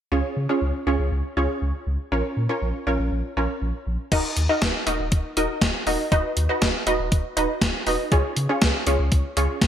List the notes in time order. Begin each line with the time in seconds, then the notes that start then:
0.12 C#2 C#4 F4 G#4 C#5
0.37 C#3
0.49 C#4 F4 G#4 C#5
0.61 C#2
0.87 C#2 C#4 F4 G#4 C#5
0.99 C#2
1.11 C#2
1.37 C#2 C#4 F4 G#4 C#5
1.62 C#2
1.87 C#2
2.12 A#1 C#4 F4 A#4 C#5
2.37 A#2
2.49 C#4 F4 A#4 C#5
2.62 A#1
2.87 A#1 C#4 F4 A#4 C#5
2.99 A#1
3.12 A#1
3.37 A#1 C#4 F4 A#4 C#5
3.62 A#1
3.87 A#1
4.12 D#1 D#4 F#4 A#4 D#5, kick, closed hi-hat, crash
4.37 D#2, closed hi-hat
4.49 D#4 F#4 A#4 D#5
4.62 D#1, kick, snare, closed hi-hat
4.87 D#1 D#4 F#4 A#4 D#5, closed hi-hat
4.99 D#1
5.12 D#1, kick, closed hi-hat
5.37 D#1 D#4 F#4 A#4 D#5, closed hi-hat
5.62 D#1, kick, snare, closed hi-hat
5.86 D#1 D#4 F#4 A#4 D#5, open hi-hat
6.12 D#1 D#4 F#4 B4 D#5, kick, closed hi-hat
6.37 D#2, closed hi-hat
6.49 D#4 F#4 B4 D#5
6.62 D#1, kick, snare, closed hi-hat
6.87 D#1 D#4 F#4 B4 D#5, closed hi-hat
6.99 D#1
7.12 D#1, kick, closed hi-hat
7.37 D#1 D#4 F#4 B4 D#5, closed hi-hat
7.62 D#1, kick, snare, closed hi-hat
7.87 D#1 D#4 F#4 B4 D#5, open hi-hat
8.12 C#2 C#4 F4 G#4 C#5, kick, closed hi-hat
8.37 C#3, closed hi-hat
8.49 C#4 F4 G#4 C#5
8.62 C#2, kick, snare, closed hi-hat
8.87 C#2 C#4 F4 G#4 C#5, closed hi-hat
8.99 C#2
9.12 C#2, kick, closed hi-hat
9.37 C#2 C#4 F4 G#4 C#5, closed hi-hat
9.62 C#2, kick, snare, closed hi-hat